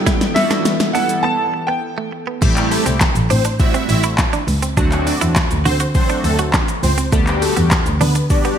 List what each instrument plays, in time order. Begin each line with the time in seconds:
Already playing: analog synth pad E3 B3 A4, analog polysynth F#3 G3 B3 E4, grand piano G5
0.06 clean electric guitar E4, kick, snare, shaker
0.21 snare, closed hi-hat, shaker
0.35 analog polysynth G3 B3 E4 F#4, grand piano E5, muted clean electric guitar stroke, snare, open hi-hat, shaker
0.51 clean electric guitar D4, snare, closed hi-hat, shaker
0.65 snare, shaker
0.80 snare, closed hi-hat, shaker
0.93 analog polysynth G3 B3 E4 A4, clean electric guitar D4, grand piano F#5, open hi-hat, shaker
1.09 closed hi-hat, shaker
1.23 clean electric guitar B3, grand piano A5
1.54 muted clean electric guitar stroke
1.67 clean electric guitar B3, grand piano G5
1.98 clean electric guitar A3
2.12 muted clean electric guitar stroke
2.27 clean electric guitar B3
2.42 double bass A1, analog polysynth G3 A3 C4 E4 G4, clean electric guitar A3, kick, crash, shaker
2.57 clap, closed hi-hat, shaker
2.71 supersaw synth A3 A4, muted clean electric guitar stroke, open hi-hat, shaker
2.86 double bass C2, clean electric guitar C4, closed hi-hat, shaker
3.01 muted clean electric guitar stroke, kick, snare, clap, shaker
3.15 double bass A1, closed hi-hat, shaker
3.30 double bass A2, supersaw synth C4 C5, clean electric guitar D4, open hi-hat, shaker
3.45 clean electric guitar D4, closed hi-hat, shaker
3.59 analog polysynth G3 A3 C4 E4 F#4, supersaw synth E4 E5, kick, shaker
3.74 clean electric guitar C4, closed hi-hat, shaker
3.89 double bass A1, supersaw synth E4 E5, muted clean electric guitar stroke, open hi-hat, shaker
4.03 clean electric guitar E4, closed hi-hat, shaker
4.18 kick, snare, clap, shaker
4.33 clean electric guitar D4, closed hi-hat, shaker
4.48 double bass C#2, muted clean electric guitar stroke, open hi-hat, shaker
4.62 clean electric guitar C4, closed hi-hat, shaker
4.77 double bass D2, analog polysynth F#3 A3 C4 D4 F#4, clean electric guitar D4, kick, shaker
4.92 clap, closed hi-hat, shaker
5.07 supersaw synth D4 D5, muted clean electric guitar stroke, open hi-hat, shaker
5.21 double bass E2, clean electric guitar E4, closed hi-hat, shaker
5.36 muted clean electric guitar stroke, kick, snare, clap, shaker
5.51 double bass D2, closed hi-hat, shaker
5.65 double bass D3, supersaw synth C4 C5, clean electric guitar F#4, open hi-hat, shaker
5.80 clean electric guitar F#4, closed hi-hat, shaker
5.95 analog polysynth F#3 A3 C4 D4 F#4, supersaw synth C4 C5, kick, shaker
6.10 clean electric guitar D4, closed hi-hat, shaker
6.24 double bass D2, supersaw synth A3 A4, muted clean electric guitar stroke, open hi-hat, shaker
6.39 clean electric guitar F#4, closed hi-hat, shaker
6.54 clean electric guitar D4, kick, snare, clap, shaker
6.68 muted clean electric guitar stroke, closed hi-hat, shaker
6.83 double bass C#2, supersaw synth C4 C5, open hi-hat, shaker
6.98 clean electric guitar C4, closed hi-hat, shaker
7.12 double bass D2, analog polysynth G3 B3 D4 F#4 G4, clean electric guitar A3, kick, shaker
7.27 clap, closed hi-hat, shaker
7.42 supersaw synth A3 A4, muted clean electric guitar stroke, open hi-hat, shaker
7.57 double bass E2, clean electric guitar B3, closed hi-hat, shaker
7.71 muted clean electric guitar stroke, kick, snare, clap, shaker
7.86 double bass D2, closed hi-hat, shaker
8.01 double bass D3, supersaw synth B3 B4, clean electric guitar D4, open hi-hat, shaker
8.15 clean electric guitar D4, closed hi-hat, shaker
8.30 analog polysynth G3 B3 D4 F#4 G4, supersaw synth D4 D5, kick, shaker
8.45 clean electric guitar B3, closed hi-hat, shaker